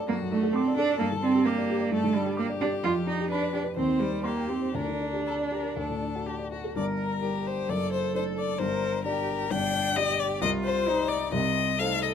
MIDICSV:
0, 0, Header, 1, 4, 480
1, 0, Start_track
1, 0, Key_signature, -2, "minor"
1, 0, Tempo, 461894
1, 1037, Time_signature, 4, 2, 24, 8
1, 4414, Tempo, 502934
1, 6814, Tempo, 458365
1, 12447, End_track
2, 0, Start_track
2, 0, Title_t, "Violin"
2, 0, Program_c, 0, 40
2, 97, Note_on_c, 0, 66, 62
2, 557, Note_off_c, 0, 66, 0
2, 569, Note_on_c, 0, 69, 75
2, 1516, Note_on_c, 0, 67, 65
2, 1531, Note_off_c, 0, 69, 0
2, 1998, Note_off_c, 0, 67, 0
2, 2014, Note_on_c, 0, 69, 68
2, 2468, Note_off_c, 0, 69, 0
2, 2475, Note_on_c, 0, 67, 68
2, 3419, Note_off_c, 0, 67, 0
2, 3425, Note_on_c, 0, 71, 63
2, 3903, Note_off_c, 0, 71, 0
2, 3922, Note_on_c, 0, 72, 64
2, 4403, Note_off_c, 0, 72, 0
2, 4422, Note_on_c, 0, 67, 60
2, 4894, Note_on_c, 0, 70, 53
2, 4909, Note_off_c, 0, 67, 0
2, 5335, Note_off_c, 0, 70, 0
2, 5383, Note_on_c, 0, 69, 59
2, 5459, Note_off_c, 0, 69, 0
2, 5636, Note_on_c, 0, 70, 46
2, 5866, Note_off_c, 0, 70, 0
2, 5874, Note_on_c, 0, 69, 59
2, 6340, Note_on_c, 0, 67, 59
2, 6354, Note_off_c, 0, 69, 0
2, 6580, Note_off_c, 0, 67, 0
2, 6584, Note_on_c, 0, 66, 47
2, 6810, Note_off_c, 0, 66, 0
2, 6819, Note_on_c, 0, 74, 72
2, 6903, Note_off_c, 0, 74, 0
2, 7054, Note_on_c, 0, 70, 68
2, 7552, Note_on_c, 0, 72, 68
2, 7568, Note_off_c, 0, 70, 0
2, 7797, Note_on_c, 0, 74, 78
2, 7812, Note_off_c, 0, 72, 0
2, 8027, Note_off_c, 0, 74, 0
2, 8034, Note_on_c, 0, 72, 67
2, 8263, Note_off_c, 0, 72, 0
2, 8270, Note_on_c, 0, 72, 76
2, 8354, Note_off_c, 0, 72, 0
2, 8513, Note_on_c, 0, 74, 74
2, 8728, Note_on_c, 0, 72, 82
2, 8744, Note_off_c, 0, 74, 0
2, 9200, Note_off_c, 0, 72, 0
2, 9206, Note_on_c, 0, 70, 80
2, 9691, Note_on_c, 0, 79, 98
2, 9707, Note_off_c, 0, 70, 0
2, 10170, Note_on_c, 0, 75, 110
2, 10186, Note_off_c, 0, 79, 0
2, 10409, Note_on_c, 0, 74, 88
2, 10424, Note_off_c, 0, 75, 0
2, 10633, Note_off_c, 0, 74, 0
2, 10639, Note_on_c, 0, 75, 107
2, 10723, Note_off_c, 0, 75, 0
2, 10872, Note_on_c, 0, 72, 99
2, 11342, Note_on_c, 0, 74, 88
2, 11358, Note_off_c, 0, 72, 0
2, 11590, Note_off_c, 0, 74, 0
2, 11606, Note_on_c, 0, 75, 94
2, 12086, Note_on_c, 0, 77, 97
2, 12102, Note_off_c, 0, 75, 0
2, 12321, Note_off_c, 0, 77, 0
2, 12328, Note_on_c, 0, 75, 78
2, 12412, Note_off_c, 0, 75, 0
2, 12447, End_track
3, 0, Start_track
3, 0, Title_t, "Grand piano"
3, 0, Program_c, 1, 0
3, 0, Control_c, 1, 64, 127
3, 0, Note_on_c, 1, 42, 55
3, 0, Note_on_c, 1, 54, 40
3, 0, Note_on_c, 1, 62, 45
3, 0, Note_on_c, 1, 69, 53
3, 0, Note_on_c, 1, 74, 50
3, 0, Note_on_c, 1, 86, 51
3, 93, Note_off_c, 1, 42, 0
3, 93, Note_on_c, 1, 42, 51
3, 163, Note_off_c, 1, 74, 0
3, 225, Note_off_c, 1, 54, 0
3, 225, Note_on_c, 1, 54, 42
3, 332, Note_off_c, 1, 62, 0
3, 332, Note_on_c, 1, 62, 47
3, 406, Note_off_c, 1, 54, 0
3, 451, Note_off_c, 1, 69, 0
3, 451, Note_on_c, 1, 69, 48
3, 519, Note_off_c, 1, 62, 0
3, 578, Note_off_c, 1, 86, 0
3, 578, Note_on_c, 1, 86, 52
3, 638, Note_off_c, 1, 69, 0
3, 703, Note_on_c, 1, 74, 51
3, 760, Note_off_c, 1, 86, 0
3, 816, Note_on_c, 1, 69, 45
3, 881, Note_off_c, 1, 74, 0
3, 930, Note_on_c, 1, 74, 48
3, 997, Note_off_c, 1, 69, 0
3, 1009, Note_off_c, 1, 42, 0
3, 1043, Note_off_c, 1, 74, 0
3, 1043, Note_on_c, 1, 43, 56
3, 1056, Control_c, 1, 64, 0
3, 1166, Note_on_c, 1, 50, 42
3, 1207, Control_c, 1, 64, 127
3, 1285, Note_on_c, 1, 62, 47
3, 1352, Note_off_c, 1, 50, 0
3, 1404, Note_on_c, 1, 67, 46
3, 1471, Note_off_c, 1, 62, 0
3, 1528, Note_on_c, 1, 86, 53
3, 1591, Note_off_c, 1, 67, 0
3, 1642, Note_on_c, 1, 74, 48
3, 1714, Note_off_c, 1, 86, 0
3, 1759, Note_on_c, 1, 67, 55
3, 1832, Note_off_c, 1, 74, 0
3, 1871, Note_on_c, 1, 74, 53
3, 1950, Note_off_c, 1, 67, 0
3, 1972, Note_off_c, 1, 43, 0
3, 1991, Note_on_c, 1, 43, 51
3, 2067, Note_off_c, 1, 74, 0
3, 2113, Note_on_c, 1, 50, 44
3, 2239, Note_on_c, 1, 62, 45
3, 2309, Note_off_c, 1, 50, 0
3, 2347, Note_on_c, 1, 67, 51
3, 2432, Note_off_c, 1, 62, 0
3, 2464, Note_on_c, 1, 86, 54
3, 2547, Note_off_c, 1, 67, 0
3, 2590, Note_on_c, 1, 74, 47
3, 2666, Note_off_c, 1, 86, 0
3, 2711, Note_on_c, 1, 67, 47
3, 2789, Note_off_c, 1, 74, 0
3, 2832, Note_on_c, 1, 74, 47
3, 2909, Note_off_c, 1, 67, 0
3, 2931, Note_off_c, 1, 43, 0
3, 2947, Note_on_c, 1, 41, 57
3, 2958, Note_off_c, 1, 74, 0
3, 2984, Control_c, 1, 64, 0
3, 3080, Note_on_c, 1, 53, 43
3, 3135, Control_c, 1, 64, 127
3, 3193, Note_on_c, 1, 62, 47
3, 3274, Note_off_c, 1, 53, 0
3, 3329, Note_on_c, 1, 67, 45
3, 3390, Note_off_c, 1, 62, 0
3, 3448, Note_on_c, 1, 83, 52
3, 3519, Note_off_c, 1, 67, 0
3, 3556, Note_on_c, 1, 74, 46
3, 3638, Note_off_c, 1, 83, 0
3, 3667, Note_on_c, 1, 67, 47
3, 3751, Note_off_c, 1, 74, 0
3, 3780, Note_on_c, 1, 71, 47
3, 3866, Note_off_c, 1, 67, 0
3, 3885, Note_off_c, 1, 41, 0
3, 3911, Note_off_c, 1, 71, 0
3, 3914, Note_on_c, 1, 39, 54
3, 3943, Control_c, 1, 64, 0
3, 4032, Note_on_c, 1, 51, 39
3, 4144, Control_c, 1, 64, 127
3, 4149, Note_on_c, 1, 67, 45
3, 4233, Note_off_c, 1, 51, 0
3, 4279, Note_on_c, 1, 72, 43
3, 4355, Note_off_c, 1, 67, 0
3, 4402, Note_on_c, 1, 84, 49
3, 4479, Note_off_c, 1, 72, 0
3, 4530, Note_on_c, 1, 79, 41
3, 4596, Note_off_c, 1, 84, 0
3, 4638, Note_on_c, 1, 67, 39
3, 4721, Note_off_c, 1, 79, 0
3, 4767, Note_on_c, 1, 72, 39
3, 4837, Note_off_c, 1, 67, 0
3, 4860, Note_off_c, 1, 39, 0
3, 4889, Note_on_c, 1, 38, 51
3, 4891, Note_off_c, 1, 72, 0
3, 4911, Control_c, 1, 64, 0
3, 5013, Note_on_c, 1, 50, 37
3, 5101, Control_c, 1, 64, 127
3, 5139, Note_on_c, 1, 62, 40
3, 5211, Note_off_c, 1, 50, 0
3, 5256, Note_on_c, 1, 67, 40
3, 5335, Note_off_c, 1, 62, 0
3, 5392, Note_on_c, 1, 82, 40
3, 5453, Note_off_c, 1, 67, 0
3, 5503, Note_on_c, 1, 74, 40
3, 5581, Note_off_c, 1, 82, 0
3, 5620, Note_on_c, 1, 67, 44
3, 5697, Note_off_c, 1, 74, 0
3, 5734, Note_on_c, 1, 70, 41
3, 5815, Note_off_c, 1, 67, 0
3, 5834, Note_off_c, 1, 38, 0
3, 5859, Note_off_c, 1, 70, 0
3, 5862, Note_on_c, 1, 38, 48
3, 5885, Control_c, 1, 64, 0
3, 5983, Note_on_c, 1, 45, 37
3, 6058, Control_c, 1, 64, 127
3, 6104, Note_on_c, 1, 62, 38
3, 6174, Note_off_c, 1, 45, 0
3, 6233, Note_on_c, 1, 66, 41
3, 6294, Note_off_c, 1, 62, 0
3, 6350, Note_on_c, 1, 81, 44
3, 6418, Note_off_c, 1, 66, 0
3, 6457, Note_on_c, 1, 74, 38
3, 6536, Note_off_c, 1, 81, 0
3, 6580, Note_on_c, 1, 66, 36
3, 6650, Note_off_c, 1, 74, 0
3, 6698, Note_on_c, 1, 69, 35
3, 6767, Note_off_c, 1, 66, 0
3, 6783, Note_off_c, 1, 38, 0
3, 6811, Note_on_c, 1, 31, 46
3, 6813, Note_off_c, 1, 69, 0
3, 6813, Note_on_c, 1, 43, 50
3, 6834, Control_c, 1, 64, 0
3, 6992, Control_c, 1, 64, 127
3, 7295, Note_on_c, 1, 55, 38
3, 7296, Note_on_c, 1, 62, 39
3, 7301, Note_on_c, 1, 70, 41
3, 7742, Note_off_c, 1, 55, 0
3, 7742, Note_off_c, 1, 62, 0
3, 7745, Note_off_c, 1, 70, 0
3, 7757, Note_off_c, 1, 31, 0
3, 7758, Note_off_c, 1, 43, 0
3, 7780, Note_on_c, 1, 30, 49
3, 7784, Note_on_c, 1, 42, 52
3, 7805, Control_c, 1, 64, 0
3, 7989, Control_c, 1, 64, 127
3, 8257, Note_on_c, 1, 57, 40
3, 8266, Note_on_c, 1, 62, 44
3, 8271, Note_on_c, 1, 72, 42
3, 8693, Note_off_c, 1, 57, 0
3, 8697, Note_off_c, 1, 62, 0
3, 8700, Note_off_c, 1, 72, 0
3, 8706, Note_off_c, 1, 30, 0
3, 8709, Note_off_c, 1, 42, 0
3, 8734, Note_on_c, 1, 43, 55
3, 8735, Note_on_c, 1, 31, 50
3, 8759, Control_c, 1, 64, 0
3, 8912, Control_c, 1, 64, 127
3, 9209, Note_on_c, 1, 55, 48
3, 9212, Note_on_c, 1, 62, 45
3, 9217, Note_on_c, 1, 74, 46
3, 9648, Note_off_c, 1, 55, 0
3, 9649, Note_off_c, 1, 62, 0
3, 9652, Note_off_c, 1, 74, 0
3, 9662, Note_off_c, 1, 31, 0
3, 9662, Note_off_c, 1, 43, 0
3, 9690, Note_on_c, 1, 43, 54
3, 9691, Note_on_c, 1, 31, 59
3, 10164, Note_on_c, 1, 55, 52
3, 10169, Note_on_c, 1, 62, 49
3, 10174, Note_on_c, 1, 74, 55
3, 10598, Note_off_c, 1, 55, 0
3, 10601, Note_off_c, 1, 62, 0
3, 10604, Note_off_c, 1, 74, 0
3, 10611, Note_off_c, 1, 43, 0
3, 10612, Note_off_c, 1, 31, 0
3, 10639, Note_on_c, 1, 48, 61
3, 10640, Note_on_c, 1, 36, 71
3, 10660, Control_c, 1, 64, 0
3, 10815, Control_c, 1, 64, 127
3, 11116, Note_on_c, 1, 55, 53
3, 11122, Note_on_c, 1, 63, 52
3, 11126, Note_on_c, 1, 72, 58
3, 11554, Note_off_c, 1, 55, 0
3, 11557, Note_off_c, 1, 63, 0
3, 11559, Note_off_c, 1, 72, 0
3, 11567, Note_off_c, 1, 36, 0
3, 11567, Note_off_c, 1, 48, 0
3, 11590, Note_on_c, 1, 36, 67
3, 11591, Note_on_c, 1, 48, 62
3, 11618, Control_c, 1, 64, 0
3, 11806, Control_c, 1, 64, 127
3, 12088, Note_on_c, 1, 57, 49
3, 12094, Note_on_c, 1, 63, 46
3, 12095, Note_on_c, 1, 72, 51
3, 12447, Note_off_c, 1, 36, 0
3, 12447, Note_off_c, 1, 48, 0
3, 12447, Note_off_c, 1, 57, 0
3, 12447, Note_off_c, 1, 63, 0
3, 12447, Note_off_c, 1, 72, 0
3, 12447, End_track
4, 0, Start_track
4, 0, Title_t, "Cello"
4, 0, Program_c, 2, 42
4, 88, Note_on_c, 2, 58, 80
4, 171, Note_off_c, 2, 58, 0
4, 323, Note_on_c, 2, 57, 83
4, 549, Note_on_c, 2, 60, 84
4, 564, Note_off_c, 2, 57, 0
4, 789, Note_off_c, 2, 60, 0
4, 795, Note_on_c, 2, 62, 81
4, 1023, Note_off_c, 2, 62, 0
4, 1029, Note_on_c, 2, 58, 82
4, 1112, Note_off_c, 2, 58, 0
4, 1269, Note_on_c, 2, 60, 85
4, 1506, Note_on_c, 2, 58, 81
4, 1522, Note_off_c, 2, 60, 0
4, 1984, Note_on_c, 2, 57, 87
4, 2000, Note_off_c, 2, 58, 0
4, 2229, Note_on_c, 2, 55, 80
4, 2245, Note_off_c, 2, 57, 0
4, 2476, Note_off_c, 2, 55, 0
4, 2483, Note_on_c, 2, 58, 73
4, 2567, Note_off_c, 2, 58, 0
4, 2713, Note_on_c, 2, 62, 81
4, 2796, Note_off_c, 2, 62, 0
4, 2949, Note_on_c, 2, 65, 90
4, 3032, Note_off_c, 2, 65, 0
4, 3187, Note_on_c, 2, 63, 77
4, 3431, Note_off_c, 2, 63, 0
4, 3438, Note_on_c, 2, 62, 81
4, 3671, Note_off_c, 2, 62, 0
4, 3678, Note_on_c, 2, 62, 70
4, 3761, Note_off_c, 2, 62, 0
4, 3916, Note_on_c, 2, 60, 77
4, 4163, Note_on_c, 2, 55, 68
4, 4179, Note_off_c, 2, 60, 0
4, 4410, Note_on_c, 2, 58, 75
4, 4425, Note_off_c, 2, 55, 0
4, 4645, Note_on_c, 2, 60, 63
4, 4659, Note_off_c, 2, 58, 0
4, 4890, Note_off_c, 2, 60, 0
4, 4895, Note_on_c, 2, 62, 74
4, 6314, Note_off_c, 2, 62, 0
4, 6812, Note_on_c, 2, 70, 62
4, 7266, Note_off_c, 2, 70, 0
4, 7296, Note_on_c, 2, 67, 52
4, 7780, Note_on_c, 2, 69, 65
4, 7795, Note_off_c, 2, 67, 0
4, 8735, Note_off_c, 2, 69, 0
4, 8741, Note_on_c, 2, 70, 68
4, 9206, Note_off_c, 2, 70, 0
4, 9225, Note_on_c, 2, 67, 62
4, 9688, Note_off_c, 2, 67, 0
4, 9693, Note_on_c, 2, 62, 67
4, 10175, Note_on_c, 2, 67, 74
4, 10191, Note_off_c, 2, 62, 0
4, 10640, Note_on_c, 2, 65, 80
4, 10655, Note_off_c, 2, 67, 0
4, 11118, Note_on_c, 2, 63, 73
4, 11134, Note_off_c, 2, 65, 0
4, 11593, Note_off_c, 2, 63, 0
4, 11599, Note_on_c, 2, 60, 69
4, 12075, Note_off_c, 2, 60, 0
4, 12086, Note_on_c, 2, 69, 71
4, 12447, Note_off_c, 2, 69, 0
4, 12447, End_track
0, 0, End_of_file